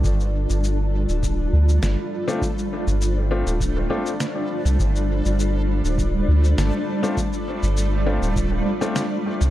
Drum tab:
SH |xx-xx--xx--xx--x|xx-xx--xx--xx--x|xx-xx--xx--xx--x|xx-xx--xx--xx--x|
SD |------------o---|------------o---|------------o---|------------o---|
BD |o-------o-------|o-------o-------|o-------o-------|o-------o-------|